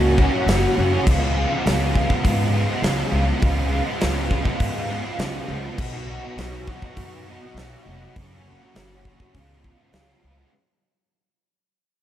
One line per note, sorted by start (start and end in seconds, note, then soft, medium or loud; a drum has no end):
0.00 0.25 C#2 loud
0.00 0.17 F#3 medium
0.00 0.18 A#3 medium
0.00 0.20 C#4 medium
0.00 0.20 F#4 medium
0.18 0.34 F#3 medium
0.18 0.33 A#3 medium
0.18 0.33 C#4 medium
0.18 0.31 F#4 medium
0.18 kick medium
0.33 0.48 F#3 medium
0.33 0.48 A#3 medium
0.33 0.50 C#4 medium
0.33 0.49 F#4 medium
0.46 0.65 F#1 medium
0.46 1.04 F#2 medium
0.46 1.04 C#3 loud
0.46 0.76 F#3 medium
0.46 0.77 A#3 loud
0.46 0.78 C#4 loud
0.46 0.79 F#4 loud
0.46 snare loud
0.46 open hi-hat medium
0.77 0.95 F#1 loud
0.77 0.93 F#3 medium
0.77 0.92 A#3 medium
0.77 0.92 C#4 medium
0.77 0.90 F#4 medium
0.91 1.05 F#3 medium
0.91 1.05 A#3 medium
0.91 1.08 C#4 medium
0.91 1.04 F#4 medium
1.05 1.43 C#2 loud
1.05 1.54 C#3 loud
1.05 1.35 F3 medium
1.05 1.23 G#3 loud
1.05 1.22 B3 loud
1.05 1.21 F4 loud
1.05 kick loud
1.05 crash loud
1.21 1.36 G#3 medium
1.21 1.36 B3 medium
1.21 1.38 F4 medium
1.35 1.65 F3 medium
1.35 1.53 G#3 medium
1.35 1.51 B3 medium
1.35 1.50 F4 medium
1.50 1.65 G#3 medium
1.50 1.66 B3 medium
1.50 1.67 F4 medium
1.64 2.02 C#2 medium
1.64 2.56 C#3 medium
1.64 1.93 F3 loud
1.64 1.94 G#3 loud
1.64 1.95 B3 loud
1.64 1.96 F4 loud
1.64 snare loud
1.64 open hi-hat medium
1.93 2.38 F3 medium
1.93 2.09 G#3 medium
1.93 2.09 B3 medium
1.93 2.06 F4 medium
1.93 kick loud
2.08 2.52 G#3 medium
2.08 2.53 B3 medium
2.08 2.54 F4 medium
2.08 kick medium
2.24 2.61 G#2 loud
2.24 kick loud
2.24 open hi-hat medium
2.52 2.80 F3 medium
2.52 2.70 G#3 medium
2.52 2.69 B3 medium
2.52 2.66 F4 medium
2.67 2.81 G#3 medium
2.67 2.83 B3 medium
2.67 2.83 F4 medium
2.81 3.01 C#2 medium
2.81 3.38 C#3 medium
2.81 3.10 F3 loud
2.81 3.11 G#3 loud
2.81 3.12 B3 loud
2.81 3.13 F4 loud
2.81 snare loud
2.81 open hi-hat medium
3.11 3.31 C#2 medium
3.11 3.39 F3 medium
3.11 3.27 G#3 medium
3.11 3.26 B3 medium
3.11 3.23 F4 medium
3.25 3.40 G#3 medium
3.25 3.41 B3 medium
3.25 3.41 F4 medium
3.39 3.79 C#2 medium
3.39 3.85 C#3 loud
3.39 3.67 F3 loud
3.39 3.57 G#3 loud
3.39 3.57 B3 loud
3.39 3.53 F4 loud
3.39 kick loud
3.39 open hi-hat medium
3.55 3.68 G#3 medium
3.55 3.70 B3 medium
3.55 3.71 F4 medium
3.68 3.99 F3 medium
3.68 3.86 G#3 medium
3.68 3.86 B3 medium
3.68 3.83 F4 medium
3.84 4.00 G#3 medium
3.84 4.02 B3 medium
3.84 4.01 F4 medium
3.99 4.39 C#2 medium
3.99 4.59 C#3 loud
3.99 4.28 F3 medium
3.99 4.29 G#3 medium
3.99 4.31 B3 loud
3.99 4.32 F4 loud
3.99 snare loud
3.99 open hi-hat medium
4.30 4.75 F3 medium
4.30 4.47 G#3 medium
4.30 4.45 B3 medium
4.30 4.44 F4 medium
4.30 kick medium
4.45 4.89 G#3 medium
4.45 4.90 B3 medium
4.45 4.91 F4 medium
4.45 kick medium
4.60 4.97 G#2 medium
4.60 kick medium
4.60 open hi-hat medium
4.89 5.17 F3 medium
4.89 5.06 G#3 medium
4.89 5.04 B3 medium
4.89 5.02 F4 medium
5.03 5.18 G#3 medium
5.03 5.19 B3 medium
5.03 5.20 F4 medium
5.18 5.37 C#2 medium
5.18 5.76 C#3 loud
5.18 5.46 F3 loud
5.18 5.48 G#3 medium
5.18 5.49 B3 medium
5.18 5.50 F4 loud
5.18 snare loud
5.18 open hi-hat medium
5.47 5.67 C#2 loud
5.47 5.76 F3 medium
5.47 5.66 G#3 medium
5.47 5.64 B3 medium
5.47 5.62 F4 medium
5.64 5.78 G#3 medium
5.64 5.77 B3 medium
5.64 5.77 F4 medium
5.77 6.15 B1 loud
5.77 6.22 B2 loud
5.77 6.06 F#3 loud
5.77 5.95 B3 loud
5.77 5.94 D#4 loud
5.77 5.91 F#4 loud
5.77 kick loud
5.77 crash loud
5.92 6.08 B3 medium
5.92 6.09 D#4 medium
5.92 6.10 F#4 medium
6.08 6.37 F#3 medium
6.08 6.25 B3 medium
6.08 6.23 D#4 medium
6.08 6.21 F#4 medium
6.22 6.38 B3 medium
6.22 6.39 D#4 medium
6.22 6.39 F#4 medium
6.37 6.74 B1 medium
6.37 6.97 B2 medium
6.37 6.67 F#3 loud
6.37 6.68 B3 loud
6.37 6.69 D#4 loud
6.37 6.70 F#4 loud
6.37 snare loud
6.37 open hi-hat medium
6.68 7.12 F#3 medium
6.68 6.85 B3 medium
6.68 6.84 D#4 medium
6.68 kick medium
6.72 6.82 F#4 medium
6.82 7.29 D#4 medium
6.82 7.30 F#4 medium
6.82 kick medium
6.87 7.28 B3 medium
6.97 7.34 F#2 medium
6.97 kick loud
6.97 open hi-hat medium
7.28 7.57 F#3 medium
7.28 7.45 B3 medium
7.28 7.44 D#4 medium
7.28 7.42 F#4 medium
7.44 7.58 B3 medium
7.44 7.59 D#4 medium
7.44 7.59 F#4 medium
7.54 7.73 B1 medium
7.54 8.14 B2 loud
7.54 snare loud
7.54 open hi-hat medium
7.58 7.87 F#3 loud
7.58 7.89 B3 loud
7.58 7.89 D#4 loud
7.58 7.91 F#4 loud
7.86 8.04 F1 loud
7.86 8.15 F#3 medium
7.90 8.06 B3 medium
7.90 8.04 D#4 medium
7.90 8.03 F#4 loud
8.04 8.17 B3 medium
8.04 8.16 D#4 medium
8.04 8.15 F#4 medium
8.16 8.53 F#1 loud
8.16 8.61 F#2 loud
8.16 8.62 C#3 loud
8.16 8.36 F#3 loud
8.16 kick loud
8.16 open hi-hat medium
8.21 8.35 A#3 loud
8.21 8.33 C#4 loud
8.21 8.32 F#4 loud
8.33 8.47 F#3 medium
8.33 8.49 A#3 medium
8.33 8.49 C#4 medium
8.33 8.50 F#4 medium
8.48 8.64 F#3 medium
8.48 8.63 A#3 medium
8.48 8.62 C#4 medium
8.48 8.61 F#4 medium
8.63 8.76 F#3 medium
8.63 8.76 A#3 medium
8.63 8.76 C#4 medium
8.63 8.77 F#4 medium
8.74 9.11 F#1 medium
8.74 9.32 F#2 loud
8.74 9.33 C#3 loud
8.74 9.05 F#3 medium
8.74 9.05 A#3 loud
8.74 9.07 C#4 loud
8.74 9.07 F#4 loud
8.74 snare loud
8.74 open hi-hat medium
9.05 9.23 F#3 medium
9.05 9.22 A#3 medium
9.05 9.21 C#4 medium
9.05 9.20 F#4 medium
9.05 kick medium
9.20 9.34 A#3 medium
9.20 9.33 C#4 medium
9.20 9.33 F#4 medium
9.20 kick medium
9.24 9.35 F#3 medium
9.34 9.71 C#2 medium
9.34 9.93 C#3 loud
9.34 9.64 F3 loud
9.34 9.65 G#3 loud
9.34 9.66 B3 loud
9.34 kick loud
9.34 open hi-hat medium
9.39 9.67 F4 loud
9.64 9.94 F3 medium
9.64 9.81 G#3 medium
9.64 9.80 B3 medium
9.64 kick medium
9.69 9.78 F4 medium
9.79 9.95 G#3 medium
9.79 9.96 B3 medium
9.79 9.97 F4 medium
9.92 10.11 C#2 medium
9.92 10.51 C#3 medium
9.92 10.22 F3 medium
9.92 10.23 G#3 medium
9.92 snare loud
9.92 open hi-hat medium
9.97 10.24 B3 loud
9.97 10.25 F4 loud
10.24 10.42 C#2 medium
10.24 10.51 F3 medium
10.24 10.40 G#3 medium
10.24 10.39 B3 medium
10.24 10.37 F4 medium
10.38 10.53 G#3 medium
10.38 10.52 B3 medium
10.38 10.51 F4 medium